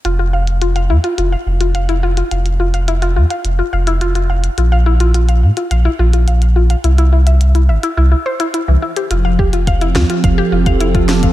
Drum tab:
HH |x--xxx-xx--xxx-x|xx-xxx-xx--xxx-x|x--xxx-xx--xxx-x|xx-xxx-x---xx--x|
SD |----------------|----------------|----------------|----------------|
BD |----------------|----------------|----------------|----------------|

HH |x--xxx-xx--xxx-x|
SD |------o-------o-|
BD |--o-o-o-o--o-o-o|